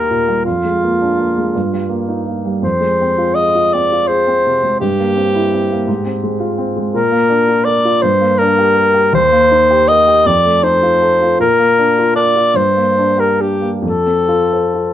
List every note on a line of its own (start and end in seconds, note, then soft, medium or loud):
0.00 0.41 D#2 soft
0.00 0.28 G3 soft
0.00 0.47 A#3 soft
0.00 0.47 D#4 soft
0.00 0.47 G4 soft
0.00 0.44 A#4 medium
0.10 0.39 A#2 soft
0.28 0.46 G3 soft
0.45 1.52 F2 soft
0.45 2.23 F4 medium
0.65 0.94 G#3 soft
0.84 1.12 A#3 soft
1.01 1.30 D4 soft
1.19 1.47 A#3 soft
1.38 1.55 G#3 soft
1.55 2.60 G2 soft
1.73 2.02 G3 soft
1.89 2.19 A#3 soft
2.08 2.38 D#4 soft
2.27 2.56 A#3 soft
2.45 2.63 G3 soft
2.62 4.78 F2 soft
2.62 3.36 C5 medium
2.81 3.11 G#3 soft
3.01 3.30 C4 soft
3.18 3.48 F4 soft
3.35 3.66 G#4 soft
3.35 3.74 D#5 medium
3.55 3.84 F4 soft
3.73 4.03 C4 soft
3.73 4.09 D5 medium
3.92 4.21 F4 soft
4.08 4.38 G#4 soft
4.08 4.80 C5 medium
4.28 4.57 C4 soft
4.46 4.75 C3 soft
4.63 4.82 G#3 soft
4.80 5.85 G2 soft
4.80 6.54 G4 medium
5.00 5.29 A#3 soft
5.17 5.46 C4 soft
5.35 5.64 E4 soft
5.54 5.82 C4 soft
5.72 5.89 A#3 soft
5.88 6.91 G#2 soft
6.06 6.34 C4 soft
6.23 6.52 G#3 soft
6.40 6.69 F4 soft
6.58 6.87 C4 soft
6.76 6.94 G#3 soft
6.93 7.99 A#2 soft
6.93 7.66 A#4 medium
7.11 7.40 A#3 soft
7.29 7.58 D4 soft
7.48 7.76 F4 soft
7.65 7.96 A#4 soft
7.65 8.03 D5 medium
7.85 8.03 F4 soft
8.02 9.10 G2 medium
8.02 8.40 C5 medium
8.20 8.50 A#3 soft
8.38 8.69 D4 soft
8.38 9.13 A#4 medium
8.58 8.87 G4 soft
8.76 9.06 A#4 soft
8.94 9.13 G4 soft
9.13 10.22 D#2 medium
9.13 9.90 C5 medium
9.32 9.62 A#3 soft
9.51 9.81 D#4 soft
9.71 10.00 G4 soft
9.88 10.19 A#4 soft
9.88 10.28 D#5 medium
10.08 10.26 G4 soft
10.26 11.36 F2 medium
10.26 10.65 D5 medium
10.45 10.75 A3 soft
10.63 10.94 D#4 soft
10.63 11.40 C5 medium
10.83 11.13 F4 soft
11.02 11.32 A4 soft
11.22 11.40 F4 soft
11.39 12.53 A#2 medium
11.39 12.15 A#4 medium
11.59 11.89 A#3 soft
11.79 12.09 D4 soft
11.99 12.29 F4 soft
12.16 12.48 A#4 soft
12.16 12.58 D5 medium
12.36 12.56 F4 soft
12.54 13.80 G2 soft
12.54 13.21 C5 medium
12.77 13.10 A#3 soft
12.97 13.31 D4 soft
13.18 13.53 G4 soft
13.18 13.43 A#4 medium
13.39 13.75 D4 soft
13.39 13.73 G4 medium
13.62 13.84 A#3 soft
13.82 14.93 F2 soft
13.82 14.93 A4 medium
14.07 14.43 C4 soft
14.28 14.65 F4 soft
14.53 14.89 C5 soft
14.74 14.93 F4 soft